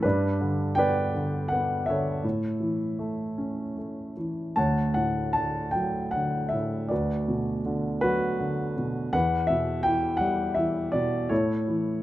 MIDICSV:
0, 0, Header, 1, 2, 480
1, 0, Start_track
1, 0, Key_signature, 2, "major"
1, 0, Tempo, 736196
1, 27, Time_signature, 3, 2, 24, 8
1, 1947, Tempo, 784314
1, 4347, Tempo, 743494
1, 5787, Tempo, 715137
1, 6747, Tempo, 751880
1, 7679, End_track
2, 0, Start_track
2, 0, Title_t, "Grand piano"
2, 0, Program_c, 0, 0
2, 0, Control_c, 0, 64, 127
2, 16, Note_on_c, 0, 71, 68
2, 27, Note_on_c, 0, 62, 55
2, 29, Note_on_c, 0, 43, 60
2, 36, Control_c, 0, 64, 0
2, 166, Control_c, 0, 64, 127
2, 265, Note_on_c, 0, 50, 41
2, 489, Note_on_c, 0, 79, 80
2, 502, Note_off_c, 0, 71, 0
2, 505, Note_on_c, 0, 59, 43
2, 511, Note_on_c, 0, 74, 58
2, 512, Note_on_c, 0, 71, 60
2, 717, Note_off_c, 0, 62, 0
2, 736, Note_off_c, 0, 50, 0
2, 745, Note_on_c, 0, 50, 43
2, 968, Note_on_c, 0, 78, 68
2, 983, Note_off_c, 0, 59, 0
2, 993, Note_off_c, 0, 79, 0
2, 993, Note_on_c, 0, 59, 44
2, 1200, Note_off_c, 0, 78, 0
2, 1203, Note_off_c, 0, 74, 0
2, 1204, Note_off_c, 0, 71, 0
2, 1213, Note_on_c, 0, 76, 63
2, 1217, Note_off_c, 0, 50, 0
2, 1227, Note_on_c, 0, 50, 40
2, 1238, Note_on_c, 0, 73, 45
2, 1241, Note_on_c, 0, 69, 45
2, 1436, Note_off_c, 0, 43, 0
2, 1451, Note_off_c, 0, 59, 0
2, 1455, Note_off_c, 0, 50, 0
2, 1459, Note_on_c, 0, 45, 46
2, 1470, Control_c, 0, 64, 0
2, 1568, Control_c, 0, 64, 127
2, 1697, Note_on_c, 0, 52, 35
2, 1949, Note_on_c, 0, 57, 36
2, 2187, Note_on_c, 0, 61, 34
2, 2421, Note_off_c, 0, 57, 0
2, 2430, Note_on_c, 0, 57, 31
2, 2641, Note_off_c, 0, 76, 0
2, 2646, Note_off_c, 0, 52, 0
2, 2653, Note_off_c, 0, 73, 0
2, 2654, Note_off_c, 0, 69, 0
2, 2671, Note_on_c, 0, 52, 32
2, 2888, Note_off_c, 0, 45, 0
2, 2892, Note_off_c, 0, 61, 0
2, 2900, Note_off_c, 0, 57, 0
2, 2906, Note_off_c, 0, 52, 0
2, 2909, Note_on_c, 0, 81, 69
2, 2913, Note_on_c, 0, 38, 46
2, 2920, Note_on_c, 0, 73, 48
2, 2921, Note_on_c, 0, 78, 48
2, 2922, Control_c, 0, 64, 0
2, 3028, Control_c, 0, 64, 127
2, 3134, Note_off_c, 0, 78, 0
2, 3144, Note_on_c, 0, 78, 65
2, 3155, Note_on_c, 0, 45, 38
2, 3159, Note_off_c, 0, 81, 0
2, 3370, Note_off_c, 0, 78, 0
2, 3381, Note_on_c, 0, 81, 70
2, 3398, Note_on_c, 0, 50, 37
2, 3610, Note_off_c, 0, 73, 0
2, 3615, Note_on_c, 0, 79, 65
2, 3633, Note_off_c, 0, 81, 0
2, 3636, Note_on_c, 0, 54, 38
2, 3859, Note_on_c, 0, 78, 67
2, 3869, Note_off_c, 0, 50, 0
2, 3873, Note_off_c, 0, 79, 0
2, 3879, Note_on_c, 0, 50, 40
2, 4089, Note_on_c, 0, 76, 56
2, 4090, Note_off_c, 0, 45, 0
2, 4114, Note_off_c, 0, 78, 0
2, 4115, Note_on_c, 0, 45, 39
2, 4324, Note_off_c, 0, 38, 0
2, 4329, Note_off_c, 0, 54, 0
2, 4333, Note_on_c, 0, 74, 52
2, 4336, Note_off_c, 0, 50, 0
2, 4342, Note_off_c, 0, 45, 0
2, 4343, Note_off_c, 0, 76, 0
2, 4347, Note_on_c, 0, 66, 37
2, 4349, Note_on_c, 0, 71, 38
2, 4350, Note_on_c, 0, 38, 49
2, 4356, Control_c, 0, 64, 0
2, 4461, Control_c, 0, 64, 127
2, 4589, Note_on_c, 0, 47, 39
2, 4798, Note_off_c, 0, 74, 0
2, 4830, Note_on_c, 0, 50, 44
2, 5046, Note_off_c, 0, 66, 0
2, 5047, Note_off_c, 0, 71, 0
2, 5060, Note_on_c, 0, 71, 81
2, 5072, Note_on_c, 0, 54, 42
2, 5074, Note_on_c, 0, 66, 59
2, 5293, Note_off_c, 0, 50, 0
2, 5302, Note_on_c, 0, 50, 43
2, 5518, Note_off_c, 0, 71, 0
2, 5523, Note_off_c, 0, 47, 0
2, 5548, Note_on_c, 0, 47, 44
2, 5763, Note_off_c, 0, 38, 0
2, 5763, Note_off_c, 0, 66, 0
2, 5767, Note_off_c, 0, 54, 0
2, 5769, Note_off_c, 0, 50, 0
2, 5780, Note_off_c, 0, 47, 0
2, 5780, Note_on_c, 0, 78, 81
2, 5781, Note_on_c, 0, 40, 51
2, 5794, Note_on_c, 0, 71, 52
2, 5798, Control_c, 0, 64, 0
2, 5911, Control_c, 0, 64, 127
2, 6009, Note_on_c, 0, 76, 76
2, 6031, Note_on_c, 0, 47, 41
2, 6035, Note_off_c, 0, 78, 0
2, 6251, Note_on_c, 0, 79, 84
2, 6265, Note_off_c, 0, 76, 0
2, 6266, Note_on_c, 0, 52, 44
2, 6479, Note_on_c, 0, 78, 77
2, 6481, Note_off_c, 0, 71, 0
2, 6502, Note_on_c, 0, 55, 46
2, 6504, Note_off_c, 0, 79, 0
2, 6731, Note_on_c, 0, 76, 67
2, 6735, Note_off_c, 0, 52, 0
2, 6743, Note_off_c, 0, 78, 0
2, 6745, Note_on_c, 0, 52, 45
2, 6957, Note_off_c, 0, 47, 0
2, 6970, Note_on_c, 0, 74, 66
2, 6981, Note_on_c, 0, 47, 43
2, 6983, Note_off_c, 0, 76, 0
2, 7190, Note_off_c, 0, 40, 0
2, 7197, Note_off_c, 0, 55, 0
2, 7204, Note_off_c, 0, 52, 0
2, 7210, Note_on_c, 0, 73, 60
2, 7211, Note_off_c, 0, 47, 0
2, 7215, Note_on_c, 0, 64, 43
2, 7217, Note_on_c, 0, 45, 52
2, 7217, Note_on_c, 0, 69, 40
2, 7220, Note_off_c, 0, 74, 0
2, 7228, Control_c, 0, 64, 0
2, 7338, Control_c, 0, 64, 127
2, 7454, Note_on_c, 0, 52, 40
2, 7679, Note_off_c, 0, 45, 0
2, 7679, Note_off_c, 0, 52, 0
2, 7679, Note_off_c, 0, 64, 0
2, 7679, Note_off_c, 0, 69, 0
2, 7679, Note_off_c, 0, 73, 0
2, 7679, End_track
0, 0, End_of_file